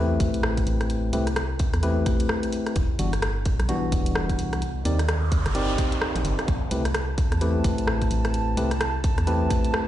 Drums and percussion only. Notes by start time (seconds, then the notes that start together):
0.20 kick, open hi-hat
0.34 closed hi-hat
0.43 cross-stick
0.57 kick, closed hi-hat
0.67 open hi-hat
0.81 cross-stick, closed hi-hat
0.90 closed hi-hat
1.13 open hi-hat
1.27 cross-stick, closed hi-hat
1.36 cross-stick, closed hi-hat
1.59 kick, open hi-hat
1.74 cross-stick, closed hi-hat
1.83 closed hi-hat
2.06 kick, cross-stick, open hi-hat
2.20 closed hi-hat
2.29 cross-stick
2.43 closed hi-hat
2.52 open hi-hat
2.66 cross-stick, closed hi-hat
2.76 kick, closed hi-hat
2.99 open hi-hat
3.13 cross-stick, closed hi-hat
3.22 cross-stick, closed hi-hat
3.45 kick, open hi-hat
3.60 cross-stick, closed hi-hat
3.69 closed hi-hat
3.92 kick, open hi-hat
4.06 closed hi-hat
4.15 cross-stick
4.29 kick, closed hi-hat
4.39 open hi-hat
4.53 cross-stick, closed hi-hat
4.62 closed hi-hat
4.85 open hi-hat
4.99 cross-stick, closed hi-hat
5.09 cross-stick, closed hi-hat
5.32 kick, open hi-hat
5.46 cross-stick, closed hi-hat
5.55 closed hi-hat
5.78 kick, cross-stick, open hi-hat
5.92 closed hi-hat
6.01 cross-stick
6.16 closed hi-hat
6.25 open hi-hat
6.39 cross-stick, closed hi-hat
6.48 kick, closed hi-hat
6.71 open hi-hat
6.85 cross-stick, closed hi-hat
6.94 cross-stick, closed hi-hat
7.18 kick, open hi-hat
7.32 cross-stick, closed hi-hat
7.41 closed hi-hat
7.64 kick, open hi-hat
7.78 closed hi-hat
7.87 cross-stick
8.02 kick, closed hi-hat
8.11 open hi-hat
8.25 cross-stick, closed hi-hat
8.34 closed hi-hat
8.57 open hi-hat
8.71 cross-stick, closed hi-hat
8.81 cross-stick, closed hi-hat
9.04 kick, open hi-hat
9.18 cross-stick, closed hi-hat
9.27 closed hi-hat
9.50 kick, cross-stick, open hi-hat
9.65 closed hi-hat
9.74 cross-stick